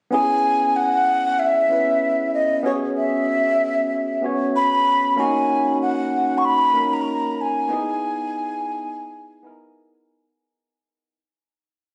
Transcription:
0.11 1.66 B3 medium
0.11 1.66 C#4 medium
0.11 1.67 E4 medium
0.11 1.68 G#4 loud
0.11 0.78 G#5 loud
0.76 1.41 F#5 loud
1.39 2.33 E5 loud
1.69 2.61 B3 medium
1.69 2.61 C#4 medium
1.69 2.62 E4 medium
1.69 2.63 B4 medium
2.34 2.63 D#5 medium
2.63 4.18 B3 medium
2.63 4.19 C#4 medium
2.63 4.20 F#4 medium
2.63 4.20 G#4 loud
2.63 2.72 C#5 medium
2.97 4.24 E5 loud
4.22 5.14 B3 medium
4.22 5.14 C#4 medium
4.22 5.15 F#4 medium
4.22 5.15 C#5 medium
4.56 5.15 B5 loud
5.16 6.71 A#3 medium
5.16 6.72 C#4 medium
5.16 6.72 D#4 medium
5.16 6.73 F#4 loud
5.16 5.77 G#5 loud
5.82 6.39 F#5 medium
6.38 6.47 C#6 medium
6.45 6.95 B5 loud
6.74 7.66 A#3 medium
6.74 7.66 C#4 medium
6.74 7.67 D#4 medium
6.74 7.67 A#4 medium
6.93 7.43 A#5 loud
7.41 9.61 G#5 medium
7.69 9.24 B3 medium
7.69 9.24 D#4 medium
7.69 9.25 E4 medium
7.69 9.26 G#4 loud
9.43 10.19 B3 medium
9.43 10.19 D#4 medium
9.43 10.20 E4 medium
9.43 10.20 A#4 medium

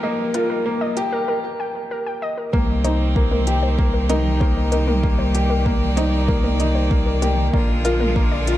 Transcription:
0.00 1.24 F3 medium
0.00 1.24 G3 medium
0.00 0.03 A#3 medium
0.00 1.24 A#3 medium
0.00 0.21 A#3 medium
0.00 1.24 D#4 medium
0.00 0.34 F4 medium
0.00 0.97 G4 loud
0.00 1.24 G4 medium
0.00 2.55 A#4 loud
0.00 0.10 D#5 loud
0.34 0.64 F4 medium
0.34 0.39 A#4 loud
0.34 closed hi-hat medium
0.50 0.60 A#4 loud
0.66 0.95 A#3 medium
0.81 0.88 D#5 loud
0.97 1.27 G4 medium
0.97 closed hi-hat medium
1.12 1.17 A#4 loud
1.28 1.38 A#4 medium
1.60 1.67 G5 medium
1.91 1.98 A#4 medium
2.07 2.11 G5 medium
2.22 2.32 D#5 loud
2.38 2.44 A#4 medium
2.53 7.50 C2 medium
2.53 7.49 D#3 medium
2.53 7.49 G3 medium
2.53 2.83 A#3 medium
2.53 8.58 A#3 medium
2.53 5.01 C4 medium
2.53 7.49 G4 medium
2.53 2.64 A#4 loud
2.53 kick loud
2.53 mid tom medium
2.84 3.14 D#4 medium
2.84 2.91 C5 loud
2.84 closed hi-hat medium
3.16 3.34 A#3 medium
3.16 3.20 A#4 loud
3.16 kick loud
3.31 3.42 A#4 loud
3.31 mid tom medium
3.47 3.65 G4 medium
3.47 closed hi-hat medium
3.63 3.70 C5 loud
3.78 3.96 A#3 medium
3.78 kick loud
3.94 3.98 A#4 medium
4.09 4.39 D#4 loud
4.09 4.20 A#4 loud
4.09 closed hi-hat medium
4.09 mid tom medium
4.40 4.71 A#3 medium
4.40 4.47 C5 loud
4.40 kick loud
4.72 5.02 D#4 medium
4.72 4.76 A#4 medium
4.72 closed hi-hat medium
4.88 4.98 A#4 loud
4.88 mid tom medium
5.03 5.21 A#3 medium
5.03 7.51 D5 medium
5.03 kick loud
5.19 5.26 C5 medium
5.35 5.53 G4 medium
5.35 closed hi-hat medium
5.50 5.54 A#4 loud
5.65 5.84 A#3 medium
5.65 5.76 A#4 loud
5.65 kick loud
5.65 mid tom medium
5.97 6.27 D#4 loud
5.97 6.04 C5 medium
5.97 closed hi-hat medium
6.28 6.58 A#3 medium
6.28 6.32 A#4 loud
6.28 kick loud
6.44 6.54 A#4 loud
6.44 mid tom medium
6.60 6.89 D#4 medium
6.60 closed hi-hat medium
6.75 6.82 C5 loud
6.91 7.09 A#3 medium
6.91 kick loud
7.06 7.11 A#4 medium
7.22 7.40 G4 medium
7.22 7.32 A#4 loud
7.22 closed hi-hat medium
7.22 mid tom medium
7.53 8.58 A#1 medium
7.53 8.58 D3 medium
7.53 8.58 F3 medium
7.53 8.58 G#3 medium
7.53 7.71 A#3 medium
7.53 8.58 F4 medium
7.53 7.60 D5 medium
7.53 kick loud
7.85 8.14 F4 loud
7.85 7.89 A#4 loud
7.85 closed hi-hat medium
8.00 8.11 A#4 loud
8.00 mid tom medium
8.16 8.46 A#3 medium
8.16 kick loud
8.32 8.38 D5 loud
8.47 8.58 F4 medium
8.47 closed hi-hat medium

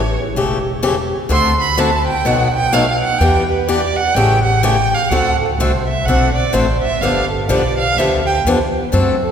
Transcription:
0.00 0.16 A1 medium
0.00 0.17 C#5 medium
0.35 1.11 E1 medium
0.35 0.57 C#3 medium
0.35 0.57 E3 medium
0.35 0.57 A3 medium
0.35 0.57 C#4 medium
0.35 0.57 G4 medium
0.83 0.94 C#3 medium
0.83 0.94 E3 medium
0.83 0.94 A3 medium
0.83 0.94 C#4 medium
0.83 0.94 G4 medium
1.29 2.06 D2 medium
1.29 1.51 D3 medium
1.29 1.52 A3 medium
1.29 1.51 C4 medium
1.29 1.51 F#4 medium
1.29 1.52 A4 medium
1.29 1.59 C6 loud
1.61 1.81 B5 medium
1.77 1.89 D3 medium
1.77 1.89 A3 medium
1.77 1.89 C4 medium
1.77 1.89 F#4 medium
1.77 1.89 A4 medium
1.77 2.07 A5 medium
2.07 2.27 G5 medium
2.25 3.01 B1 medium
2.25 2.46 B2 medium
2.25 2.47 F#3 medium
2.25 2.47 A3 medium
2.25 2.47 D#4 medium
2.25 2.47 F#4 medium
2.25 2.54 F#5 medium
2.54 2.75 G5 loud
2.73 2.84 B2 medium
2.73 2.84 F#3 medium
2.73 2.85 A3 medium
2.73 2.84 D#4 medium
2.73 2.85 F#4 medium
2.73 3.01 F5 medium
3.02 3.20 F#5 loud
3.18 3.96 E2 medium
3.18 3.42 E3 medium
3.18 3.42 B3 medium
3.18 3.42 D4 medium
3.18 3.43 G4 medium
3.18 3.49 G5 medium
3.50 3.69 B4 medium
3.68 3.80 E3 medium
3.68 3.80 B3 medium
3.68 3.80 D4 medium
3.68 3.80 G4 medium
3.68 3.98 D5 medium
3.96 4.16 F#5 loud
4.14 4.92 A1 medium
4.14 4.37 C#3 medium
4.14 4.38 E3 medium
4.14 4.37 A3 medium
4.14 4.38 C#4 medium
4.14 4.38 G4 medium
4.14 4.43 G5 loud
4.44 4.64 F#5 medium
4.63 4.75 C#3 medium
4.63 4.75 E3 medium
4.63 4.75 A3 medium
4.63 4.75 C#4 medium
4.63 4.75 G4 medium
4.63 4.96 G5 medium
4.94 5.11 F5 medium
5.09 5.57 D2 medium
5.09 5.33 D3 medium
5.09 5.33 A3 medium
5.09 5.33 C4 medium
5.09 5.33 F#4 medium
5.09 5.33 A4 medium
5.09 5.40 F#5 loud
5.41 5.60 A4 soft
5.58 6.05 C2 medium
5.58 5.71 D3 medium
5.58 5.71 A3 medium
5.58 5.71 C4 medium
5.58 5.71 F#4 medium
5.58 5.71 A4 medium
5.58 5.87 C5 medium
5.88 6.07 E5 medium
6.05 6.53 B1 medium
6.05 6.29 D3 medium
6.05 6.29 A3 medium
6.05 6.29 C4 medium
6.05 6.34 F#5 medium
6.09 6.29 F#4 medium
6.09 6.29 A4 medium
6.35 6.54 D5 medium
6.52 6.82 A1 medium
6.52 6.65 D3 medium
6.52 6.65 A3 medium
6.52 6.65 C4 medium
6.52 6.66 F#4 medium
6.52 6.66 A4 medium
6.52 6.81 C5 medium
6.82 7.02 E5 medium
6.82 muted upright bass stroke soft
7.00 7.48 G1 medium
7.00 7.24 D3 medium
7.00 7.24 F3 medium
7.00 7.24 B3 medium
7.00 7.24 D4 medium
7.00 7.24 G4 medium
7.00 7.30 F5 medium
7.30 7.50 A4 soft
7.49 7.96 B1 medium
7.49 7.61 D3 medium
7.49 7.61 F3 medium
7.49 7.61 B3 medium
7.49 7.61 D4 medium
7.49 7.61 G4 medium
7.49 7.78 D5 medium
7.78 7.99 F5 loud
7.97 8.44 D2 medium
7.97 8.19 D3 medium
7.97 8.20 F3 medium
7.97 8.20 B3 medium
7.97 8.20 D4 medium
7.97 8.20 G4 medium
7.97 8.26 E5 medium
8.26 8.37 G5 medium
8.45 8.91 E2 medium
8.45 8.57 D3 medium
8.45 8.58 F3 medium
8.45 8.58 B3 medium
8.45 8.58 D4 medium
8.45 8.58 G4 medium
8.92 9.32 F#2 medium
8.92 9.14 D3 medium
8.92 9.14 A3 medium
8.92 9.15 C4 medium
8.92 9.15 F#4 medium
8.92 9.15 A4 medium
9.22 9.32 A4 medium

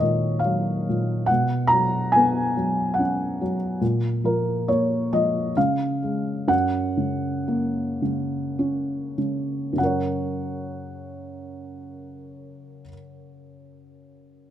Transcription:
0.00 1.26 D#2 medium
0.00 0.02 A#2 soft
0.00 0.88 A#2 soft
0.00 1.26 D#3 soft
0.00 1.31 A#4 medium
0.00 1.31 C#5 medium
0.00 0.39 D#5 medium
0.39 1.23 F5 medium
0.45 1.27 F#3 soft
0.89 1.29 A#2 soft
1.26 1.71 F#5 medium
1.31 3.78 B2 medium
1.67 2.13 A#5 medium
1.73 2.55 F#3 soft
2.12 2.99 G#5 medium
2.16 3.78 B3 medium
2.57 3.40 F#3 soft
2.94 3.54 F#5 medium
2.99 3.79 C#4 soft
3.41 3.81 F#3 soft
3.81 5.52 A#2 medium
4.24 5.11 F3 soft
4.24 4.69 A#4 medium
4.68 5.54 A#3 soft
4.68 5.09 C#5 medium
5.13 5.56 F3 soft
5.13 5.58 D#5 medium
5.57 6.47 C#3 medium
5.57 6.52 F5 medium
6.03 6.48 G#3 soft
6.48 9.71 F#2 medium
6.48 9.13 F#5 medium
6.97 8.01 C#3 medium
7.48 9.74 A#3 medium
8.02 9.16 C#3 soft
8.59 9.75 C#4 medium
9.18 9.74 C#3 soft
9.73 12.79 F#2 soft
9.73 12.82 C#3 soft
9.78 12.84 F#3 soft
9.78 12.87 C#4 soft
9.78 12.85 F#5 medium
9.83 12.89 A#4 soft
9.83 12.92 C#5 soft

